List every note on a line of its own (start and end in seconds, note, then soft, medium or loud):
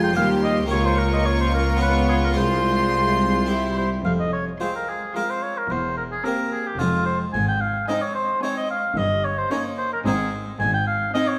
0.00 0.14 F1 soft
0.00 0.12 F2 soft
0.00 0.14 F2 medium
0.00 0.11 G#3 soft
0.00 0.16 G#3 soft
0.00 0.11 C4 soft
0.00 0.12 F4 soft
0.00 0.15 F4 soft
0.00 0.16 G5 medium
0.00 0.71 C6 medium
0.14 0.71 D#2 medium
0.14 0.71 D#2 soft
0.14 0.67 D#2 soft
0.14 0.70 G3 soft
0.14 0.68 C4 soft
0.14 0.69 G4 soft
0.14 0.70 G4 soft
0.14 0.29 F5 medium
0.43 0.57 D#5 medium
0.66 1.76 A#3 soft
0.66 1.79 A#3 soft
0.66 1.76 C#4 soft
0.66 1.77 F4 soft
0.71 2.33 C#2 medium
0.71 2.33 C#2 soft
0.71 2.34 C#2 medium
0.71 3.49 F4 soft
0.71 0.87 C#5 medium
0.71 2.34 C#6 medium
0.85 1.00 C5 medium
0.98 1.12 A#4 medium
1.13 1.27 D#5 medium
1.26 1.40 C#5 medium
1.40 1.53 C5 medium
1.54 1.81 A#4 medium
1.76 2.33 B3 soft
1.76 2.34 C#4 soft
1.76 2.33 F4 soft
1.81 2.37 B3 soft
1.81 1.94 B4 medium
2.09 2.15 G#4 medium
2.24 2.30 A#4 soft
2.32 3.43 G#3 soft
2.32 3.44 F4 soft
2.37 3.85 C2 medium
2.37 3.85 C2 soft
2.37 3.81 C2 soft
2.37 3.47 G#3 soft
2.37 3.74 C5 medium
2.37 3.85 C6 medium
3.46 3.85 G3 soft
3.46 4.02 E4 soft
3.46 3.84 E4 soft
3.46 4.02 G4 soft
3.77 3.90 C5 medium
4.04 4.49 F1 soft
4.04 4.48 F2 soft
4.04 4.11 F5 medium
4.20 4.32 D#5 soft
4.33 4.45 C#5 medium
4.60 5.00 G#3 soft
4.60 5.02 G#3 soft
4.60 5.00 C4 soft
4.60 5.01 F4 soft
4.60 4.74 C5 medium
4.60 5.02 C6 soft
4.75 4.90 A#4 soft
4.89 5.15 G#4 soft
5.16 5.56 G#3 soft
5.16 5.55 G#3 soft
5.16 5.55 C4 soft
5.16 5.56 F4 soft
5.16 5.31 A#4 medium
5.16 5.56 C6 soft
5.30 5.44 C5 soft
5.42 5.59 C#5 medium
5.57 5.72 A#4 medium
5.70 6.14 E1 soft
5.70 6.13 E2 soft
5.70 6.14 E2 soft
5.70 5.97 C5 soft
5.97 6.04 A#4 soft
6.12 6.26 G#4 medium
6.24 6.64 A#3 soft
6.24 6.65 C4 soft
6.24 6.66 G4 soft
6.24 6.65 G4 soft
6.24 6.51 A#4 soft
6.24 6.66 A#5 soft
6.52 6.68 G#4 medium
6.66 6.80 G4 soft
6.79 7.23 F1 soft
6.79 7.22 F2 soft
6.79 7.23 F2 medium
6.79 7.30 G#3 soft
6.79 7.20 C4 soft
6.79 7.30 C4 soft
6.79 7.05 F4 medium
6.79 7.20 F4 soft
6.79 7.30 F4 soft
6.79 7.20 G#5 soft
7.06 7.18 C5 medium
7.33 7.77 G#1 medium
7.33 7.77 G#2 medium
7.33 7.77 G#2 soft
7.33 7.47 G#5 medium
7.48 7.62 G5 medium
7.61 7.87 F5 medium
7.88 8.28 G#3 soft
7.88 8.29 C4 soft
7.88 8.28 C4 soft
7.88 8.28 D#4 soft
7.88 8.30 D#4 medium
7.88 8.03 D#5 medium
7.88 8.29 G#5 soft
8.02 8.14 C#5 medium
8.15 8.42 C5 medium
8.42 8.82 G#3 soft
8.42 8.83 C4 soft
8.42 8.84 D#4 soft
8.42 8.83 D#4 soft
8.42 8.56 C#5 medium
8.42 8.84 G#5 soft
8.57 8.70 D#5 medium
8.70 8.99 F5 medium
8.97 9.40 G1 medium
8.97 9.39 G2 soft
8.97 9.40 G2 medium
8.97 9.26 D#5 medium
9.25 9.40 C#5 medium
9.38 9.51 C5 medium
9.51 9.90 A#3 soft
9.51 9.91 C#4 soft
9.51 9.92 C#4 soft
9.51 9.92 D#4 soft
9.51 9.91 D#4 soft
9.51 9.64 C#5 medium
9.51 9.92 A#5 soft
9.78 9.92 C5 medium
9.93 9.99 A#4 medium
10.06 10.49 G#1 medium
10.06 10.49 G#2 medium
10.06 10.49 G#2 soft
10.06 10.57 G#3 soft
10.06 10.47 C4 medium
10.06 10.57 C4 soft
10.06 10.47 D#4 medium
10.06 10.57 D#4 soft
10.06 10.33 G#4 medium
10.06 10.46 G#5 soft
10.60 11.03 G#1 medium
10.60 11.03 G#2 soft
10.60 11.04 G#2 medium
10.60 10.73 G#5 medium
10.74 10.86 G5 medium
10.87 11.13 F5 medium
11.14 11.39 G#3 soft
11.14 11.39 C4 soft
11.14 11.39 C4 medium
11.14 11.39 D#4 medium
11.14 11.39 D#4 soft
11.14 11.29 D#5 medium
11.14 11.39 G#5 medium
11.28 11.39 C#5 medium